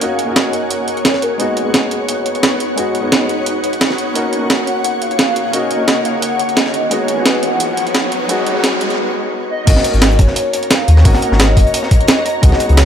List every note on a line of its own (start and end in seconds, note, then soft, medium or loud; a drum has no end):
0.00 0.25 A#3 medium
0.00 1.37 A#3 medium
0.00 0.27 C#4 medium
0.00 0.02 D#4 medium
0.00 0.26 D#4 medium
0.00 0.03 F#4 medium
0.00 1.37 F#4 medium
0.00 0.27 F#4 loud
0.00 1.37 G#4 medium
0.00 6.87 C#5 medium
0.00 0.38 F5 loud
0.00 closed hi-hat medium
0.19 closed hi-hat medium
0.25 1.36 A#3 medium
0.25 1.37 C#4 medium
0.29 1.38 D#4 medium
0.29 1.39 F#4 medium
0.36 0.70 D#5 loud
0.36 snare loud
0.36 closed hi-hat medium
0.53 closed hi-hat medium
0.70 1.24 C#5 loud
0.70 closed hi-hat medium
0.88 closed hi-hat medium
0.97 closed hi-hat soft
1.05 snare loud
1.05 closed hi-hat medium
1.14 snare soft
1.22 1.41 A#4 medium
1.22 closed hi-hat medium
1.38 1.61 G#3 medium
1.38 1.63 B3 medium
1.38 4.13 B3 medium
1.38 4.13 D#4 medium
1.38 1.64 D#4 medium
1.38 8.94 F#4 medium
1.38 1.65 F#4 medium
1.38 1.91 D#5 medium
1.38 closed hi-hat medium
1.57 closed hi-hat medium
1.63 2.74 G#3 medium
1.63 2.75 B3 medium
1.67 2.76 D#4 medium
1.67 2.77 F#4 medium
1.74 snare loud
1.74 closed hi-hat medium
1.91 closed hi-hat medium
2.09 closed hi-hat medium
2.26 closed hi-hat medium
2.35 closed hi-hat soft
2.43 snare loud
2.43 closed hi-hat medium
2.60 closed hi-hat medium
2.76 2.99 G#3 medium
2.76 3.01 B3 medium
2.76 3.02 D#4 medium
2.76 3.03 F#4 medium
2.76 closed hi-hat medium
2.95 closed hi-hat medium
3.01 4.12 G#3 medium
3.01 4.13 B3 medium
3.05 4.14 D#4 medium
3.05 4.15 F#4 medium
3.12 snare loud
3.12 closed hi-hat medium
3.29 closed hi-hat medium
3.46 closed hi-hat medium
3.64 closed hi-hat medium
3.73 closed hi-hat soft
3.81 snare loud
3.81 closed hi-hat medium
3.90 snare soft
3.98 closed hi-hat medium
4.14 4.37 A#3 medium
4.14 6.89 A#3 medium
4.14 4.39 C#4 medium
4.14 4.40 D#4 medium
4.14 4.41 F#4 loud
4.14 6.89 G#4 medium
4.14 closed hi-hat medium
4.14 riser medium
4.33 closed hi-hat medium
4.39 5.50 A#3 medium
4.39 5.51 C#4 medium
4.43 5.52 D#4 medium
4.43 5.53 F#4 medium
4.50 snare loud
4.50 closed hi-hat medium
4.67 5.03 F#5 loud
4.67 closed hi-hat medium
4.84 closed hi-hat medium
5.01 5.55 F5 loud
5.01 closed hi-hat medium
5.11 closed hi-hat soft
5.19 snare loud
5.19 closed hi-hat medium
5.36 closed hi-hat medium
5.52 5.75 A#3 medium
5.52 5.77 C#4 medium
5.52 5.78 D#4 medium
5.52 5.79 F#4 medium
5.52 6.06 D#5 loud
5.52 closed hi-hat medium
5.71 closed hi-hat medium
5.77 6.88 A#3 medium
5.77 6.89 C#4 medium
5.81 6.90 D#4 medium
5.81 6.91 F#4 medium
5.88 snare loud
5.88 closed hi-hat medium
6.05 6.21 F5 loud
6.05 closed hi-hat medium
6.22 6.58 F#5 loud
6.22 closed hi-hat medium
6.39 closed hi-hat medium
6.49 closed hi-hat soft
6.57 6.93 D#5 loud
6.57 snare loud
6.57 closed hi-hat medium
6.66 snare soft
6.74 closed hi-hat medium
6.90 7.13 G#3 medium
6.90 7.15 B3 medium
6.90 8.96 B3 medium
6.90 8.96 D#4 medium
6.90 7.16 D#4 medium
6.90 7.16 F#4 loud
6.90 7.27 C#5 loud
6.90 8.96 C#5 medium
6.90 closed hi-hat medium
7.08 closed hi-hat medium
7.14 8.26 G#3 medium
7.14 8.27 B3 medium
7.19 8.28 D#4 medium
7.19 8.29 F#4 medium
7.26 7.45 B4 medium
7.26 snare loud
7.26 closed hi-hat medium
7.43 8.12 F#5 loud
7.43 closed hi-hat medium
7.60 closed hi-hat loud
7.77 closed hi-hat medium
7.87 closed hi-hat soft
7.95 snare loud
7.95 closed hi-hat loud
8.12 closed hi-hat medium
8.28 8.51 G#3 medium
8.28 8.53 B3 medium
8.28 8.54 D#4 medium
8.28 8.54 F#4 loud
8.28 closed hi-hat loud
8.46 closed hi-hat medium
8.52 8.97 G#3 medium
8.52 8.98 B3 medium
8.57 8.99 D#4 medium
8.57 9.00 F#4 medium
8.64 snare loud
8.64 closed hi-hat loud
8.81 closed hi-hat medium
8.90 closed hi-hat soft
9.50 10.20 D#5 loud
9.66 9.76 G#1 loud
9.66 9.89 A#3 medium
9.66 9.91 C#4 medium
9.66 9.92 D#4 medium
9.66 12.85 F#4 medium
9.66 9.92 F#4 loud
9.66 12.40 C#5 medium
9.66 12.40 A#5 medium
9.66 kick loud
9.66 closed hi-hat loud
9.66 closed hi-hat medium
9.66 crash loud
9.76 snare medium
9.76 snare soft
9.84 closed hi-hat medium
9.90 10.18 G#1 medium
9.90 11.02 A#3 medium
9.90 11.03 C#4 medium
9.90 closed hi-hat soft
9.95 11.04 D#4 medium
9.95 11.05 F#4 medium
10.02 snare loud
10.02 closed hi-hat medium
10.02 closed hi-hat loud
10.11 closed hi-hat soft
10.19 10.27 F#1 loud
10.19 10.72 C#5 loud
10.19 kick loud
10.19 snare soft
10.19 closed hi-hat medium
10.27 snare soft
10.36 closed hi-hat medium
10.53 closed hi-hat medium
10.63 closed hi-hat soft
10.70 11.07 F5 loud
10.70 snare loud
10.70 closed hi-hat medium
10.70 closed hi-hat loud
10.88 11.04 D#2 medium
10.88 closed hi-hat medium
10.97 snare medium
10.97 snare soft
11.03 11.13 G#1 loud
11.03 11.27 A#3 medium
11.03 11.29 C#4 medium
11.03 11.30 D#4 medium
11.03 11.30 F#4 medium
11.03 11.39 F#5 loud
11.03 kick loud
11.03 closed hi-hat medium
11.03 open hi-hat medium
11.13 snare soft
11.22 closed hi-hat medium
11.28 11.56 G#1 medium
11.28 12.40 A#3 medium
11.28 12.41 C#4 medium
11.28 snare medium
11.33 12.42 D#4 medium
11.33 12.43 F#4 medium
11.39 11.72 D#5 loud
11.39 snare loud
11.39 closed hi-hat medium
11.57 11.65 F#1 loud
11.57 kick loud
11.57 closed hi-hat medium
11.57 open hi-hat medium
11.67 closed hi-hat soft
11.74 12.22 D#5 loud
11.74 closed hi-hat loud
11.74 closed hi-hat medium
11.83 snare soft
11.91 kick loud
11.91 closed hi-hat medium
12.01 closed hi-hat soft
12.08 snare loud
12.08 closed hi-hat medium
12.17 snare soft
12.25 12.74 D#5 loud
12.25 closed hi-hat medium
12.42 12.51 C#2 loud
12.42 12.65 G#3 medium
12.42 12.67 B3 medium
12.42 12.68 D#4 medium
12.42 12.68 F#4 loud
12.42 12.85 D#5 medium
12.42 12.85 B5 medium
12.42 kick loud
12.42 closed hi-hat medium
12.52 snare medium
12.52 snare soft
12.60 closed hi-hat medium
12.66 12.85 C#2 medium
12.66 12.85 G#3 medium
12.66 12.85 B3 medium
12.66 closed hi-hat soft
12.71 12.85 D#4 medium
12.71 12.85 F#4 medium
12.77 12.85 C#5 loud
12.77 snare loud
12.77 closed hi-hat medium